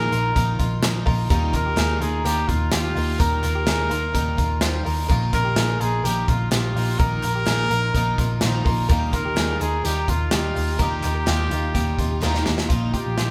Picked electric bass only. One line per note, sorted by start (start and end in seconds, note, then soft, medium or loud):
0.11 0.31 A#1 medium
0.36 0.55 A#1 medium
0.59 0.79 A#1 loud
0.82 1.02 A#1 medium
1.07 1.26 A#1 medium
1.30 1.50 D#2 loud
1.54 1.73 D#2 medium
1.77 1.97 D#2 loud
2.00 2.20 D#2 medium
2.24 2.44 D#2 medium
2.49 2.68 D#2 loud
2.71 2.91 D#2 medium
2.96 3.15 D#2 medium
3.20 3.39 D#2 loud
3.43 3.63 D#2 medium
3.67 3.86 D#2 loud
3.90 4.10 D#2 medium
4.14 4.34 D#2 medium
4.38 4.57 D#2 medium
4.61 4.81 D#2 medium
4.85 5.05 D#2 medium
5.09 5.29 A#1 medium
5.33 5.52 A#1 medium
5.56 5.76 A#1 medium
5.80 6.00 A#1 medium
6.04 6.24 A#1 loud
6.28 6.48 A#1 medium
6.52 6.71 A#1 medium
6.75 6.95 A#1 medium
7.00 7.19 A#1 loud
7.24 7.43 A#1 medium
7.47 7.66 A#1 loud
7.70 7.90 A#1 medium
7.95 8.14 A#1 loud
8.18 8.37 A#1 loud
8.42 8.61 A#1 medium
8.65 8.85 A#1 medium
8.90 9.09 D#2 loud
9.13 9.33 D#2 medium
9.37 9.56 D#2 loud
9.60 9.80 D#2 medium
9.84 10.04 D#2 medium
10.08 10.28 D#2 loud
10.32 10.51 D#2 medium
10.56 10.75 D#2 medium
10.80 10.99 D#2 loud
11.04 11.23 D#2 loud
11.27 11.46 D#2 loud
11.50 11.70 D#2 medium
11.75 11.94 D#2 medium
11.98 12.18 D#2 medium
12.23 12.42 D#2 medium
12.47 12.66 D#2 medium
12.70 12.89 A#1 medium
13.06 13.16 A#1 medium
13.18 13.31 A#1 medium